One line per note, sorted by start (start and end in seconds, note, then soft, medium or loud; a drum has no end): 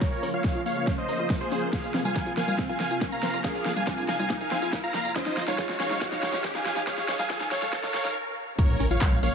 0.00 1.69 C#3 medium
0.00 5.12 F3 medium
0.00 5.12 A#3 medium
0.00 0.08 A#3 medium
0.00 5.12 F4 loud
0.00 0.29 A#4 medium
0.00 0.29 C#5 loud
0.00 kick loud
0.00 snare medium
0.00 closed hi-hat medium
0.00 riser medium
0.12 0.19 A#1 medium
0.12 open hi-hat medium
0.23 0.30 A#1 medium
0.23 0.29 C#4 medium
0.23 open hi-hat loud
0.34 0.40 A#1 medium
0.34 0.40 F4 medium
0.34 0.61 C#5 medium
0.34 0.61 F5 loud
0.44 0.48 A#4 medium
0.44 kick loud
0.44 snare medium
0.44 closed hi-hat medium
0.55 0.62 A#1 medium
0.55 0.61 F4 medium
0.55 closed hi-hat soft
0.66 0.73 A#1 loud
0.66 0.72 A#3 medium
0.66 0.93 C#5 medium
0.66 0.93 F5 medium
0.66 open hi-hat loud
0.76 0.83 G#1 medium
0.76 closed hi-hat soft
0.87 0.93 C#4 loud
0.87 kick loud
0.87 snare medium
0.87 closed hi-hat medium
0.98 1.05 A#1 medium
0.98 1.04 F4 medium
0.98 1.35 C5 medium
0.98 1.35 D#5 medium
0.98 closed hi-hat soft
1.09 1.15 A#1 medium
1.09 1.12 A#4 medium
1.09 open hi-hat loud
1.19 1.26 A#1 medium
1.19 1.26 F4 medium
1.19 closed hi-hat soft
1.30 1.36 A#3 medium
1.30 kick loud
1.30 snare medium
1.30 closed hi-hat medium
1.41 1.48 A#1 medium
1.41 1.68 G#4 medium
1.41 1.68 C5 loud
1.41 closed hi-hat soft
1.51 1.58 A#1 loud
1.51 1.58 C#4 loud
1.51 open hi-hat loud
1.62 1.69 A#1 medium
1.62 1.68 F4 medium
1.73 5.12 C3 medium
1.73 1.79 A#3 medium
1.73 2.00 G#4 medium
1.73 2.00 F5 loud
1.73 kick loud
1.73 snare medium
1.73 closed hi-hat medium
1.73 tambourine medium
1.84 1.90 F2 medium
1.84 closed hi-hat soft
1.84 tambourine soft
1.94 2.01 F2 loud
1.94 2.00 C4 loud
1.94 snare medium
1.94 open hi-hat loud
2.05 2.12 F2 medium
2.05 2.11 F4 medium
2.05 2.32 F5 medium
2.05 2.32 G#5 loud
2.05 closed hi-hat soft
2.05 tambourine medium
2.05 high conga medium
2.16 2.19 A#4 medium
2.16 kick loud
2.16 snare medium
2.16 closed hi-hat medium
2.16 tambourine soft
2.26 2.33 F2 medium
2.26 2.33 F4 medium
2.26 closed hi-hat soft
2.26 tambourine soft
2.37 2.44 F2 loud
2.37 2.43 A#3 medium
2.37 2.65 F5 medium
2.37 2.65 G#5 medium
2.37 snare medium
2.37 open hi-hat loud
2.48 2.55 D#2 medium
2.48 tambourine medium
2.48 high conga medium
2.59 2.65 C4 loud
2.59 kick loud
2.59 snare medium
2.59 closed hi-hat medium
2.59 tambourine medium
2.69 2.76 F2 medium
2.69 2.75 F4 medium
2.69 3.06 F5 medium
2.69 3.06 G#5 loud
2.69 closed hi-hat soft
2.69 tambourine soft
2.80 2.87 F2 medium
2.80 2.84 A#4 medium
2.80 snare medium
2.80 open hi-hat loud
2.91 2.97 F2 medium
2.91 2.97 F4 medium
2.91 closed hi-hat soft
2.91 tambourine medium
3.01 3.08 A#3 medium
3.01 kick loud
3.01 snare medium
3.01 closed hi-hat medium
3.01 tambourine soft
3.12 3.19 F2 medium
3.12 3.40 F5 medium
3.12 3.40 A#5 medium
3.12 closed hi-hat soft
3.12 tambourine soft
3.23 3.30 F2 loud
3.23 3.29 C4 loud
3.23 snare medium
3.23 open hi-hat loud
3.33 3.40 F2 medium
3.33 3.40 F4 medium
3.33 closed hi-hat soft
3.33 tambourine medium
3.44 3.72 G#4 medium
3.44 3.48 A#4 medium
3.44 3.72 F5 loud
3.44 kick loud
3.44 snare medium
3.44 closed hi-hat medium
3.44 tambourine medium
3.55 3.62 F2 medium
3.55 3.61 F4 medium
3.55 open hi-hat medium
3.55 tambourine soft
3.66 3.73 F2 loud
3.66 3.72 A#3 medium
3.66 snare medium
3.66 open hi-hat loud
3.76 3.83 F2 medium
3.76 4.04 F5 medium
3.76 4.04 G#5 loud
3.76 closed hi-hat soft
3.76 tambourine medium
3.76 high conga medium
3.87 3.93 C4 loud
3.87 kick loud
3.87 snare medium
3.87 closed hi-hat medium
3.87 tambourine medium
3.87 high conga medium
3.98 4.05 F2 medium
3.98 4.04 F4 medium
3.98 closed hi-hat soft
3.98 tambourine soft
4.08 4.15 F2 loud
4.08 4.12 A#4 medium
4.08 4.36 F5 medium
4.08 4.36 G#5 loud
4.08 snare medium
4.08 open hi-hat loud
4.19 4.26 D#2 medium
4.19 4.25 F4 medium
4.19 tambourine medium
4.19 high conga medium
4.30 4.36 A#3 medium
4.30 kick loud
4.30 snare medium
4.30 closed hi-hat medium
4.30 tambourine medium
4.41 4.48 F2 medium
4.41 4.77 F5 medium
4.41 4.77 G#5 loud
4.41 closed hi-hat soft
4.41 tambourine soft
4.51 4.58 F2 loud
4.51 4.58 C4 loud
4.51 snare medium
4.51 open hi-hat loud
4.62 4.69 F2 medium
4.62 4.68 F4 medium
4.62 closed hi-hat soft
4.62 tambourine medium
4.73 4.77 A#4 medium
4.73 kick loud
4.73 snare medium
4.73 closed hi-hat medium
4.73 tambourine medium
4.83 4.90 F2 medium
4.83 4.90 F4 medium
4.83 5.11 F5 medium
4.83 5.11 A#5 loud
4.83 closed hi-hat soft
4.83 tambourine soft
4.94 5.01 F2 loud
4.94 5.00 A#3 medium
4.94 snare medium
4.94 open hi-hat medium
5.05 5.12 F2 medium
5.05 tambourine medium
5.16 8.13 C#3 medium
5.16 8.13 F3 medium
5.16 8.13 G#3 medium
5.16 5.22 C#4 loud
5.16 8.13 D#4 loud
5.16 5.43 C5 medium
5.16 5.43 D#5 loud
5.16 kick loud
5.16 snare medium
5.16 closed hi-hat medium
5.16 tambourine soft
5.26 5.33 C#2 medium
5.26 5.33 D#4 medium
5.26 snare medium
5.26 closed hi-hat soft
5.26 tambourine soft
5.37 5.44 C#2 loud
5.37 5.41 F4 medium
5.37 snare loud
5.37 open hi-hat loud
5.48 5.55 C#2 medium
5.48 5.54 D#4 medium
5.48 5.75 C#5 medium
5.48 5.75 F5 loud
5.48 snare medium
5.48 closed hi-hat soft
5.48 tambourine medium
5.48 high conga medium
5.58 5.65 G#3 medium
5.58 kick loud
5.58 snare medium
5.58 closed hi-hat medium
5.58 tambourine medium
5.69 5.76 C#2 medium
5.69 snare medium
5.69 closed hi-hat soft
5.69 tambourine soft
5.80 5.87 C#2 loud
5.80 5.86 C#4 loud
5.80 6.07 C#5 medium
5.80 6.07 F5 medium
5.80 snare medium
5.80 open hi-hat medium
5.91 5.97 D#4 medium
5.91 snare medium
5.91 closed hi-hat soft
5.91 tambourine medium
5.91 high conga medium
6.01 6.05 F4 medium
6.01 kick loud
6.01 snare medium
6.01 closed hi-hat loud
6.01 tambourine medium
6.12 6.19 C#2 medium
6.12 6.18 D#4 medium
6.12 6.49 C#5 medium
6.12 6.49 F5 loud
6.12 snare medium
6.12 closed hi-hat soft
6.12 tambourine soft
6.23 6.30 C#2 loud
6.23 6.29 G#3 medium
6.23 snare loud
6.23 open hi-hat loud
6.33 6.40 C#2 medium
6.33 snare medium
6.33 tambourine medium
6.44 6.50 C#4 loud
6.44 kick loud
6.44 snare loud
6.44 closed hi-hat medium
6.44 tambourine soft
6.55 6.62 C#2 medium
6.55 6.61 D#4 medium
6.55 6.83 F5 medium
6.55 6.83 G#5 medium
6.55 snare medium
6.55 closed hi-hat soft
6.55 tambourine soft
6.66 6.73 C#2 loud
6.66 6.69 F4 medium
6.66 snare loud
6.66 open hi-hat loud
6.76 6.83 C#2 medium
6.76 6.83 D#4 medium
6.76 snare medium
6.76 closed hi-hat soft
6.76 tambourine medium
6.87 6.93 G#3 medium
6.87 7.15 C#5 medium
6.87 7.15 F5 loud
6.87 kick loud
6.87 snare medium
6.87 closed hi-hat loud
6.87 tambourine medium
6.98 7.05 C#2 medium
6.98 snare medium
6.98 open hi-hat medium
6.98 tambourine soft
7.09 7.15 C#2 loud
7.09 7.15 C#4 loud
7.09 snare loud
7.09 open hi-hat loud
7.19 7.26 C#2 loud
7.19 7.25 D#4 medium
7.19 7.47 F5 medium
7.19 7.47 G#5 loud
7.19 snare medium
7.19 closed hi-hat soft
7.19 tambourine medium
7.19 high conga medium
7.30 7.34 F4 medium
7.30 kick loud
7.30 snare loud
7.30 closed hi-hat medium
7.30 tambourine medium
7.30 high conga medium
7.41 7.48 C#2 medium
7.41 7.47 D#4 medium
7.41 snare medium
7.41 closed hi-hat soft
7.41 tambourine soft
7.51 7.58 C#2 loud
7.51 7.58 G#3 medium
7.51 7.79 C#5 medium
7.51 7.79 F5 medium
7.51 snare loud
7.51 open hi-hat loud
7.62 7.69 G#1 medium
7.62 snare medium
7.62 closed hi-hat soft
7.62 tambourine medium
7.62 high conga medium
7.73 7.79 C#4 loud
7.73 kick loud
7.73 snare loud
7.73 closed hi-hat medium
7.73 tambourine soft
7.83 7.90 D#4 medium
7.83 8.16 C#5 medium
7.83 8.16 F5 medium
7.83 snare loud
7.83 closed hi-hat soft
7.83 tambourine soft
7.94 8.01 D#2 medium
7.94 8.03 G#4 medium
7.94 snare loud
7.94 open hi-hat loud
8.05 8.12 C#2 medium
8.05 8.14 D#4 medium
8.05 snare loud
8.05 tambourine medium
8.59 9.35 C#3 medium
8.59 9.35 F3 medium
8.59 8.65 A#3 medium
8.59 9.35 A#3 medium
8.59 9.35 F4 loud
8.59 8.86 A#4 medium
8.59 8.86 C#5 loud
8.59 kick loud
8.59 closed hi-hat medium
8.59 crash loud
8.59 tambourine soft
8.59 impact medium
8.69 8.76 A#1 medium
8.69 closed hi-hat soft
8.80 8.87 A#1 loud
8.80 8.86 C#4 loud
8.80 open hi-hat loud
8.80 tambourine medium
8.91 8.98 A#1 medium
8.91 8.97 F4 medium
8.91 9.18 C#5 medium
8.91 9.18 F5 loud
8.91 closed hi-hat soft
8.91 tambourine soft
9.01 9.05 A#4 medium
9.01 kick loud
9.01 clap loud
9.01 closed hi-hat loud
9.01 tambourine soft
9.01 high conga medium
9.12 9.19 A#1 medium
9.12 9.18 F4 medium
9.12 closed hi-hat soft
9.23 9.30 A#1 loud
9.23 9.29 A#3 medium
9.23 9.35 C#5 medium
9.23 9.35 F5 medium
9.23 open hi-hat medium
9.23 tambourine medium